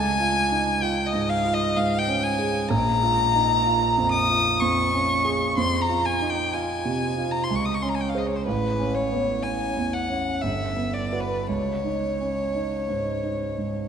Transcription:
Already playing: grand piano C#2, violin G#5
0.20 grand piano F4
0.51 grand piano D#4
0.82 grand piano F4, violin G5
1.07 violin D#5
1.13 grand piano G#2
1.30 violin F5
1.45 grand piano F4
1.54 violin D#5
1.76 grand piano G#2, violin F5
1.99 violin G5
2.08 grand piano C#4
2.23 violin G#5
2.39 grand piano G#4
2.69 grand piano A#1, violin A#5
3.03 grand piano F4
3.35 grand piano D#4
3.66 grand piano F4
3.98 grand piano F2
4.12 violin D#6
4.30 grand piano F4
4.60 grand piano F2, violin C#6
4.94 grand piano C#4
5.25 grand piano G#4
5.57 grand piano F2, violin C6
5.81 violin A#5
5.89 grand piano F4
6.06 violin G#5
6.21 grand piano D#4
6.30 violin G5
6.53 grand piano F4, violin G#5
6.85 grand piano C3
7.18 grand piano F4
7.31 violin A#5
7.44 violin C6
7.51 grand piano C#2
7.55 violin C#6
7.65 violin D#6
7.74 violin C#6
7.82 grand piano C#4, violin C6
7.89 violin A#5
7.95 violin G#5
8.01 violin G5
8.09 violin F5
8.15 grand piano G#4 C5, violin D#5
8.27 violin C#5
8.36 violin C5
8.46 grand piano A1, violin B4
8.79 grand piano C#4
8.95 violin C#5
9.12 grand piano B3
9.43 grand piano C#4, violin G#5
9.77 grand piano E2
9.93 violin F#5
10.09 grand piano C#4
10.41 grand piano G1, violin E5
10.76 grand piano B3
10.94 violin D5
11.12 grand piano F#4 B4
11.20 violin B4
11.47 grand piano C#2, violin C#5
11.84 grand piano D#4
12.21 grand piano C#4
12.55 grand piano D#4
12.89 grand piano G#2
13.24 grand piano D#4
13.58 grand piano G#2

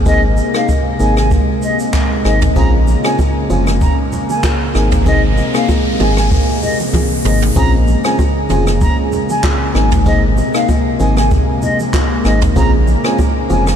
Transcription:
Already playing: sub bass G#1, analog synth pad C3 G#3 A#3
0.06 fm electric piano A#3 C4 D#4 G#4, flute D#5, kick, shaker
0.37 shaker
0.54 fm electric piano A#3 C4 D#4 G#4, flute F5, cross-stick, shaker
0.69 kick, shaker
1.00 sub bass G#1, fm electric piano A#3 C4 D#4 G#4, flute G#5, shaker
1.17 flute G#5, cross-stick, shaker
1.31 kick, shaker
1.62 flute D#5, shaker
1.80 shaker
1.93 kick, cross-stick, clap, shaker
2.25 sub bass G#1, fm electric piano A#3 C4 D#4 G#4, flute D#5, cross-stick, shaker
2.42 kick, mid tom, shaker
2.56 sub bass A#1, analog synth pad C#3 A#3, fm electric piano C4 C#4 F4 G#4, flute A#5, kick, riser, low conga, shaker
2.87 low bongo, shaker
3.04 fm electric piano C4 C#4 F4 G#4, flute G#5, cross-stick, shaker
3.19 kick, high bongo, shaker
3.50 sub bass F1, fm electric piano C4 C#4 F4 G#4, flute G#5, high bongo, low bongo, shaker
3.67 cross-stick, low bongo, shaker
3.81 flute A#5, kick, low conga, shaker
4.12 low conga, shaker
4.30 flute G#5, low bongo, shaker
4.43 kick, cross-stick, clap, high bongo, shaker
4.75 sub bass G#1, analog synth pad C3 G#3, fm electric piano A#3 C4 D#4 G#4, flute G#5, cross-stick, shaker
4.92 kick, mid tom, shaker
5.06 fm electric piano A#3 C4 D#4 G#4, flute D#5, kick, low conga, shaker
5.37 low bongo, shaker
5.54 fm electric piano A#3 C4 D#4 G#4, flute F5, cross-stick, shaker
5.69 kick, high bongo, shaker
6.00 sub bass G#1, fm electric piano A#3 C4 D#4 G#4, flute G#5, mid tom, high bongo, low bongo, shaker
6.17 flute G#5, cross-stick, low bongo, shaker
6.31 kick, low conga, shaker
6.62 flute D#5, low conga, shaker
6.80 low bongo, shaker
6.94 kick, high tom, high bongo
7.25 sub bass G#1, fm electric piano A#3 C4 D#4 G#4, flute D#5, mid tom
7.42 floor tom
7.56 sub bass A#1, analog synth pad C#3 G#3 A#3, fm electric piano C4 C#4 F4 G#4, flute A#5, kick, low conga, shaker
7.87 low bongo, shaker
8.04 fm electric piano C4 C#4 F4 G#4, flute G#5, cross-stick, shaker
8.19 kick, high bongo, shaker
8.50 sub bass F1, fm electric piano C4 C#4 F4 G#4, flute G#5, mid tom, low bongo, shaker
8.67 cross-stick, low bongo, shaker
8.81 flute A#5, kick, low conga, shaker
9.12 low conga, shaker
9.30 flute G#5, low bongo, shaker
9.43 kick, cross-stick, clap, high bongo, shaker
9.75 sub bass G#1, analog synth pad C3, fm electric piano A#3 C4 D#4 G#4, flute G#5, cross-stick, shaker
9.92 kick, mid tom, shaker
10.06 fm electric piano A#3 C4 D#4 G#4, flute D#5, kick, low conga, shaker
10.37 low bongo, shaker
10.54 fm electric piano A#3 C4 D#4 G#4, flute F5, cross-stick, shaker
10.69 kick, high bongo, shaker
11.00 sub bass G#1, fm electric piano A#3 C4 D#4 G#4, flute G#5, low bongo, shaker
11.17 flute G#5, cross-stick, low bongo, shaker
11.31 kick, low conga, shaker
11.62 flute D#5, low conga, shaker
11.80 low bongo, shaker
11.93 kick, cross-stick, clap, high bongo, shaker
12.25 sub bass G#1, fm electric piano A#3 C4 D#4 G#4, flute D#5, cross-stick, shaker
12.42 kick, mid tom, shaker
12.56 sub bass A#1, analog synth pad C#3, fm electric piano C4 C#4 F4 G#4, flute A#5, kick, low conga, shaker
12.87 low bongo, shaker
13.04 fm electric piano C4 C#4 F4 G#4, flute G#5, cross-stick, shaker
13.19 kick, high bongo, shaker
13.50 sub bass F1, fm electric piano C4 C#4 F4 G#4, flute G#5, low bongo, shaker
13.67 cross-stick, low bongo, shaker

